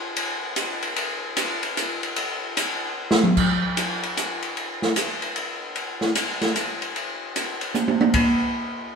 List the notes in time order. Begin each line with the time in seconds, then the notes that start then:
0.16 ride
0.56 hi-hat pedal, ride
0.83 ride
0.96 ride
1.37 hi-hat pedal, ride
1.63 ride
1.77 hi-hat pedal, ride
2.03 ride
2.16 ride
2.57 hi-hat pedal, ride
3.11 snare
3.24 mid tom
3.37 kick, crash
3.77 hi-hat pedal, ride
4.03 ride
4.17 hi-hat pedal, ride
4.42 ride
4.57 ride
4.82 snare
4.96 hi-hat pedal, ride
5.22 ride
5.36 ride
5.76 ride
6.01 snare
6.15 hi-hat pedal, ride
6.41 snare, ride
6.56 hi-hat pedal, ride
6.82 ride
6.96 ride
7.36 hi-hat pedal, ride
7.61 ride
7.74 hi-hat pedal, high tom
7.88 high tom
8.01 high tom
8.14 kick, ride bell